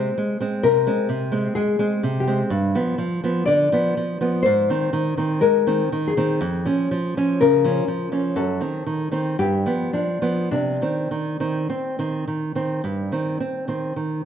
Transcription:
Already playing: G#3 C4 C5
0.18 G#3
0.40 G#3 C4
0.63 C3 A#4
0.87 G#3 C4
1.09 C3
1.32 G#3 C4
1.55 G#3 G#4
1.79 G#3 C4
2.03 C3
2.20 G4
2.27 G#3 C4
2.50 G2
2.75 F3 B3
2.98 F3
3.24 F3 B3
3.46 D3 D5
3.72 F3 B3
4.21 F3 B3
4.43 G#2 C5
4.70 D#3 C4
4.93 D#3
5.17 D#3 C4
5.41 G#3 A#4
5.67 D#3 C4
5.92 D#3
6.07 G#4
6.17 D#3 C4
6.41 F2
6.65 F3 C#4
6.91 F3
7.17 F3 C#4
7.41 C#3 A#4
7.64 F3 C#4
7.88 F3
8.12 F3 C#4
8.36 F#2 A4
8.61 D#3 C4
8.86 D#3
9.12 D#3 C4
9.39 G2 G4
9.66 F3 B3
9.93 F3 D4
10.22 F3 B3
10.51 C3 D4
10.82 D#3 C4
11.11 D#3
11.40 D#3 C4
11.69 C4
11.99 D#3 C4
12.28 D#3
12.55 D#3 C4
12.84 G2
13.12 D#3 C4
13.40 C4
13.68 D#3 C4
13.96 D#3

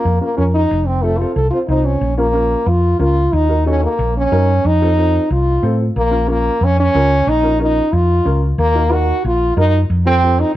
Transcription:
Already playing: A#3
0.05 F2
0.21 A#3 C#4 F4 A#4
0.36 F2 C#4 F4 A#4
0.54 D#4
0.71 F1
0.87 C4
1.02 A3 C4 F4 A4
1.18 C4 F4 A4
1.35 C2 A4
1.50 C4 F4 C5
1.68 C2 C4 D#4 F4 C5
1.85 C#4
2.01 A#1
2.18 A#3 C#4 F4 A#4
2.33 C#4 F4 A#4
2.66 F2 F4
2.99 C#2 C#4 F4 A#4
3.33 D#2 D#4
3.49 D#4 F#4 A#4
3.66 C#4 D#4 F#4 A4
3.84 A#3
3.99 A#1
4.17 C#4
4.31 F#2 D#4 F#4 A#4
4.65 F2 D#4
4.81 C4 F4 A4
4.97 C4 F4 A4
5.31 C2 F4
5.63 A2 C4 F4 A4
5.96 A#1 A#3
6.11 C#4 F4 A#4
6.27 A#3 C#4 F4 A#4
6.61 F2 C#4
6.80 C#4
6.94 C#2 C#4 F4 A#4
7.27 A#1 D#4
7.43 C#4 F4 A#4
7.59 C#4 D#4 F4 A#4
7.93 F2 F4
8.25 C#2 C#4 F4 A#4
8.58 D#2 A#3
8.75 D#4 F#4 A#4
8.91 D#4 F#4 A#4
9.24 A#1 F4
9.57 F#2 D#4 F#4 A#4
9.90 F2
10.05 C4 F4 A4
10.23 C4 F4 A4
10.40 D#4

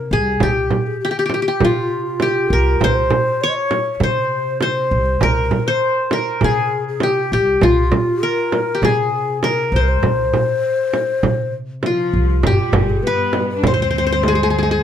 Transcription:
Already playing: C3 A#4
0.11 C2 G#4
0.40 C2 G4, frame drum
0.48 G#4
0.53 G4
0.71 frame drum
0.87 G#4
1.00 G4
1.05 G4 G#4
1.11 G4
1.15 G4
1.26 G4, frame drum
1.34 G4
1.42 G4
1.48 G4
1.60 C3 F4, frame drum
1.65 F4
2.05 F4
2.20 G4, frame drum
2.50 C2 A#4
2.81 C2 C5, frame drum
3.10 frame drum
3.41 C#5
3.49 D#5
3.56 C#5
3.71 frame drum
3.95 C#5
4.00 C3 C5, frame drum
4.61 C5, frame drum
4.91 C2
5.21 C2 A#4, frame drum
5.51 frame drum
5.67 C5
6.11 A#4, frame drum
6.41 C3 G#4, frame drum
6.88 G#4
7.00 G4, frame drum
7.32 C2 G4
7.61 C2 F4, frame drum
7.92 frame drum
8.23 A#4
8.52 frame drum
8.75 G4
8.82 C3 G#4, frame drum
9.43 A#4, frame drum
9.72 C2 C5
9.76 C5
9.81 A#4
9.88 C5
10.03 C2, frame drum
10.33 frame drum
10.94 frame drum
11.23 C3, frame drum
11.83 F3 F4, frame drum
12.13 C2
12.43 G1 G2 G3 G4, darbuka dum, frame drum
12.73 G1, frame drum, darbuka dum
12.90 G#4
13.03 B3 B4
13.33 darbuka tek, frame drum
13.50 B4
13.57 D4
13.63 D2 C4 C5, darbuka dum, frame drum
13.74 C5
13.79 C5, darbuka ka
13.91 C5, darbuka ka
13.98 C5
14.07 C5
14.12 C5
14.23 G#3 G#4, darbuka tek, frame drum
14.28 G#4
14.32 G4 G#4
14.39 G#4
14.43 G#4
14.50 G#4
14.58 G#4
14.63 G#4
14.71 G#4

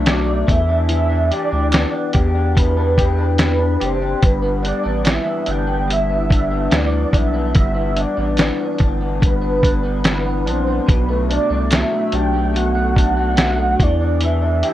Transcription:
Already playing: B1 B2 A3 D4
0.06 F#3 D5, snare, clap, closed hi-hat
0.27 A3
0.47 E2 E3 E5, kick, closed hi-hat
0.69 D4
0.89 E3 E5, closed hi-hat
1.10 D4
1.31 G4 D5, closed hi-hat
1.52 D2 D4
1.72 B3, snare, clap, closed hi-hat
1.93 D4
2.13 E2 G4, kick, closed hi-hat
2.35 D4
2.56 E3 B4, kick, closed hi-hat
2.77 D4
2.97 G4, kick, closed hi-hat
3.18 D4
3.38 snare, clap, closed hi-hat
3.42 B4
3.59 D4
3.80 F#1 G4 C5, closed hi-hat
4.02 D4
4.22 G1 G2 B4, kick, closed hi-hat
4.42 B3
4.63 D4 D5, closed hi-hat
4.83 A1 B3
5.04 E3, snare, clap, closed hi-hat
5.10 E5
5.26 B3
5.46 G1 D4, closed hi-hat
5.51 G5
5.67 B3
5.88 G2, closed hi-hat
5.92 E5
6.09 B3
6.30 D4, kick, closed hi-hat
6.51 B3
6.71 D2 E3, snare, clap, closed hi-hat
6.76 D5
6.92 B3
7.13 B1 D4 E5, kick, closed hi-hat
7.34 B3
7.54 G1 G2, kick, closed hi-hat
7.58 E5
7.74 B3
7.96 D4 D5, closed hi-hat
8.17 A1 B3
8.37 E3, snare, clap, closed hi-hat
8.58 B3
8.78 G1 D4, kick, closed hi-hat
9.00 B3
9.21 G2, kick, closed hi-hat
9.26 B4
9.41 B3
9.62 D4, kick, closed hi-hat
9.83 B3
10.04 E3, snare, clap, closed hi-hat
10.09 B4
10.26 B3
10.46 A#1 D4 C5, closed hi-hat
10.67 B3
10.89 B1 B4, kick, closed hi-hat
11.09 A3
11.29 D4 D5, closed hi-hat
11.50 C2 A3
11.71 F#3 E5, snare, clap, closed hi-hat
11.92 A3
12.12 B1 D4 G5, closed hi-hat
12.34 A3
12.54 B2 F#5, closed hi-hat
12.75 A3
12.95 D4, kick, closed hi-hat
13.17 A3
13.37 F#3, snare, clap, closed hi-hat
13.58 A3
13.79 E2 E3 D5, kick, closed hi-hat
14.01 D4
14.21 E3 E5, closed hi-hat
14.42 D4
14.63 G4, closed hi-hat

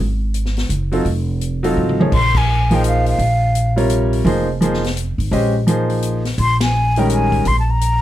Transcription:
0.00 G#1
0.34 closed hi-hat
0.45 snare
0.57 snare, open hi-hat
0.69 F#1, closed hi-hat
0.92 F#3 C4 D#4 F4 A4, open hi-hat
1.05 F1, open hi-hat
1.41 closed hi-hat
1.63 F#3 C4 D#4 F4 A4, open hi-hat
1.76 A1, mid tom
1.89 mid tom
2.00 F3 A#3 D#4 G#4 C#5, mid tom
2.12 A#1 C6, kick, crash
2.35 G#5, kick, crash
2.70 F3 A#3 D#4 G#4 C5, open hi-hat
2.75 G5
2.84 F5, closed hi-hat
3.06 F5, open hi-hat
3.19 A#1, open hi-hat
3.55 closed hi-hat
3.76 C3 G3 F4 A#4 C#5, open hi-hat
3.89 closed hi-hat
4.13 open hi-hat
4.25 F1 F3 A#3 D#4 G#4 C5, open hi-hat
4.61 F3 A#3 D#4 G#4 C5, closed hi-hat
4.73 snare
4.84 snare, open hi-hat
4.97 closed hi-hat
5.18 G#1, open hi-hat
5.31 A#1 G#3 C#4 G4 C5 D#5, open hi-hat
5.67 F3 A#3 D#4 G#4 C5, closed hi-hat
5.90 open hi-hat
6.02 closed hi-hat
6.25 snare, open hi-hat
6.38 A#1 C6, open hi-hat
6.61 G#5, snare, ride
6.96 D#3 G3 G#3 C#4 A#4 G5, open hi-hat
7.10 G#5, closed hi-hat
7.32 kick, open hi-hat
7.45 A#1 C6, open hi-hat
7.60 A5
7.71 A#5
7.81 closed hi-hat

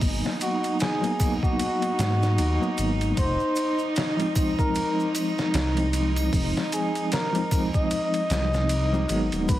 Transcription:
Already playing: F#3 A#3 B3 D#4
0.01 G#1, kick, open hi-hat, maracas
0.24 snare, maracas
0.41 F#4, ride, maracas
0.64 ride, maracas
0.80 G#4, snare, ride, maracas
1.01 F#3 A#3 B3, ride, maracas
1.06 D#4
1.20 kick, ride, triangle, maracas
1.43 F#4, kick, maracas
1.59 ride, maracas
1.82 ride, maracas
1.99 G#2, snare, ride, maracas
2.22 snare, maracas
2.38 D#2, ride, maracas
2.60 F#3 A#3 B3 D#4, maracas
2.78 G#1, ride, maracas
3.01 ride, maracas
3.17 F1 C5, kick, ride, maracas
3.40 maracas
3.56 ride, maracas
3.79 maracas
3.96 snare, ride, maracas
4.17 F3 G#3 C4, ride, maracas
4.22 D#4
4.35 kick, ride, triangle, maracas
4.59 A#4, kick, maracas
4.75 ride, maracas
5.00 maracas
5.15 ride, triangle, maracas
5.38 snare, maracas
5.54 C2, snare, ride, maracas
5.74 F3 G#3 C4, ride, maracas
5.80 D#4
5.93 ride, maracas
6.16 ride, triangle, maracas
6.33 F1, kick, open hi-hat, maracas
6.56 snare, maracas
6.72 G#4, ride, maracas
6.95 ride, maracas
7.12 A#4, snare, ride, maracas
7.33 F3 G#3 C4, ride, maracas
7.38 D#4
7.51 kick, ride, triangle, maracas
7.74 D#5, kick, maracas
7.91 ride, maracas
8.14 ride, maracas
8.30 C2, snare, ride, maracas
8.54 snare, maracas
8.69 ride, maracas
8.92 F3 G#3 C4 D#4, maracas
9.07 G#1 F#3 G#3 B3, ride, maracas
9.12 D#4
9.32 D#1, ride, maracas
9.49 G#1 G#3 B4, kick, ride, maracas

